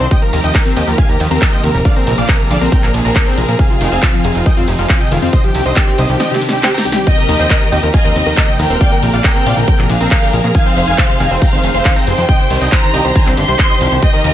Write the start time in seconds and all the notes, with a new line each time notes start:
0.00 C2 C4 C5, closed hi-hat
0.11 C3 F3 A#3 D#4 G4 D#5 G5, kick, closed hi-hat
0.22 F3 A#4, closed hi-hat
0.33 D#2 C3 A#4, open hi-hat, ride
0.44 D#2 C3 D#5 G5, closed hi-hat
0.55 D#3 A#4, kick, clap, closed hi-hat
0.66 C4 A#4, closed hi-hat
0.76 D#2 C3 D#5 G5, open hi-hat, ride
0.87 D#2 F3 A#4, closed hi-hat
0.98 C3 F5 G#5, kick, closed hi-hat
1.09 D#2 C3 A#4, closed hi-hat
1.20 D#2 D#3, open hi-hat, ride
1.31 D#2 C4 A#4, closed hi-hat
1.42 C3, kick, clap, closed hi-hat
1.52 F3 D#5 G5, closed hi-hat
1.63 D#2 C3 A#4, open hi-hat, ride
1.74 D#1 C3 A#4, closed hi-hat
1.85 D3 D4 G#4 D5 F5, kick, closed hi-hat
1.96 C4 A#4, closed hi-hat
2.07 A#1 C3 A#4, open hi-hat, ride
2.18 A#1 F3 D5 F5, closed hi-hat
2.29 C3 A#4, kick, clap, closed hi-hat
2.40 C3 A#4, closed hi-hat
2.50 A#1 D3 D5 F5, open hi-hat, ride
2.61 A#1 C4 A#4, closed hi-hat
2.72 C3 A#4 G5, kick, closed hi-hat
2.83 A#1 F3 A#4, clap, closed hi-hat
2.94 A#1 C3, open hi-hat, ride
3.05 A#1 C3 A#4, closed hi-hat
3.16 D3 A#4, kick, clap, closed hi-hat
3.27 C4 A#4 G5, closed hi-hat
3.37 A#1 C3 A#4, open hi-hat, ride
3.48 A#2 F3 A#4, closed hi-hat
3.59 C3 C4 D#4 G#4 F5, kick, closed hi-hat
3.70 C3 F4, closed hi-hat
3.81 F1 D#3 F4, open hi-hat, ride
3.92 F1 C4 G#4 F5, closed hi-hat
4.03 C3 F4, kick, clap, closed hi-hat
4.13 F3 F4, closed hi-hat
4.24 F1 C3 G#4 F5, open hi-hat, ride
4.35 F1 C3 F4, closed hi-hat
4.46 D#3 D#5 G5, kick, closed hi-hat
4.57 F1 C4 F4, closed hi-hat
4.68 F1 C3, open hi-hat, ride
4.79 F1 F3 F4, closed hi-hat
4.89 C3 F4, kick, clap, closed hi-hat
5.00 C3 D#5 G5, closed hi-hat
5.11 F1 D#3 F4, open hi-hat, ride
5.22 F2 C4 F4, closed hi-hat
5.33 C3 D#3 C4 D4 G4 C5 D#5, kick, closed hi-hat
5.44 F3 G4, closed hi-hat
5.55 C2 C3 G4, open hi-hat, ride
5.65 C2 C3 C5 D#5, closed hi-hat
5.76 D#3 G4, kick, clap, closed hi-hat
5.87 C4 G4, closed hi-hat
5.98 C2 C3 C5 D#5, open hi-hat, ride
6.09 C2 F3 G4, closed hi-hat
6.20 C3 D#5 G5, snare, closed hi-hat
6.31 C3 G4, snare, closed hi-hat
6.42 C3, open hi-hat, ride
6.49 C2 G4, snare, closed hi-hat
6.63 C4 G4, snare, clap, closed hi-hat
6.74 C4 G5 A#5, snare, closed hi-hat
6.85 C2 G4, open hi-hat, ride
6.92 G3 G4, snare, closed hi-hat
7.07 C3 F3 A#3 D#4 D#5 G5, kick, closed hi-hat, crash
7.18 C3 A#4, closed hi-hat
7.28 D#2 D#3 A#4, open hi-hat, ride
7.39 D#2 C4 D#5 G5, closed hi-hat
7.50 C3 A#4, kick, clap, closed hi-hat
7.61 D#3 A#4, closed hi-hat
7.72 D#2 C3 D#5 G5, open hi-hat, ride
7.83 D#2 C3 A#4, closed hi-hat
7.94 D#3 D#5 F5 G#5, kick, closed hi-hat
8.05 D#2 C4 A#4, closed hi-hat
8.15 D#2 C3, open hi-hat, ride
8.26 D#2 D#3 A#4, closed hi-hat
8.37 C3 A#4, kick, clap, closed hi-hat
8.48 C3 D#5 G5, closed hi-hat
8.59 D#2 D#3 A#4 G5, open hi-hat, ride
8.70 D#1 C4 A#4, closed hi-hat
8.81 C3 F3 D4 G#4 D5 F5, kick, closed hi-hat
8.92 D3 A#4, closed hi-hat
9.03 A#1 C3 A#4, open hi-hat, ride
9.13 A#1 C3 D5 F5, closed hi-hat
9.24 D3 A#4 G5, kick, clap, closed hi-hat
9.35 C4 A#4, closed hi-hat
9.46 A#1 C3 D5 F5, open hi-hat, ride
9.57 A#1 D3 A#4, closed hi-hat
9.68 C3 A#4 G5, kick, closed hi-hat
9.79 A#1 C3 A#4, clap, closed hi-hat
9.90 A#1 D3 F5, open hi-hat, ride
10.00 A#1 C4 A#4, closed hi-hat
10.11 C3 A#4, kick, clap, closed hi-hat
10.22 D3 A#4 G5, closed hi-hat
10.33 A#1 C3 A#4, open hi-hat, ride
10.44 A#2 C3 A#4, closed hi-hat
10.55 D#3 C4 D#4 F5 G#5, kick, closed hi-hat
10.66 C4 C5, closed hi-hat
10.76 F1 C3 C5, open hi-hat, ride
10.87 F1 D#3 F5 G#5, closed hi-hat
10.98 C3 C5, kick, clap, closed hi-hat
11.09 C3 C5, closed hi-hat
11.20 F1 D#3 F5 G#5, open hi-hat, ride
11.31 F1 C4 C5, closed hi-hat
11.42 C3 F5 G5 A#5, kick, closed hi-hat
11.53 F1 D#3 C5, closed hi-hat
11.63 F1 C3, open hi-hat, ride
11.74 F1 C3 C5, closed hi-hat
11.85 D#3 C5, kick, clap, closed hi-hat
11.96 C4 G5 A#5, closed hi-hat
12.07 F1 C3 C5 G5, open hi-hat, ride
12.18 F2 D#3 C5, closed hi-hat
12.28 C3 D#3 D4 G4 D#5 G5, kick, closed hi-hat
12.39 C3 C5, closed hi-hat
12.50 C2 D#3 C5, open hi-hat, ride
12.61 C2 C4 D#5 G5, closed hi-hat
12.72 C3 C5 A#5, kick, clap, closed hi-hat
12.83 D#3 C5, closed hi-hat
12.94 C2 C3 D#5 G5, open hi-hat, ride
13.05 C2 C3 C5, closed hi-hat
13.16 D#3 C5 G#5, kick, closed hi-hat
13.26 C2 C4 C5, clap, closed hi-hat
13.37 G1 C3 C6, open hi-hat, ride
13.48 C2 C3 C5, closed hi-hat
13.59 C4, kick, clap, closed hi-hat
13.70 C3 C5 D#5, closed hi-hat
13.81 C2 F3 C5, open hi-hat, ride
13.92 C2 C3 C5, closed hi-hat
14.02 C3 A#3 F4 D#5 G5, kick, closed hi-hat
14.13 D#3 A#4, closed hi-hat
14.24 D#2 C3 A#4, open hi-hat, ride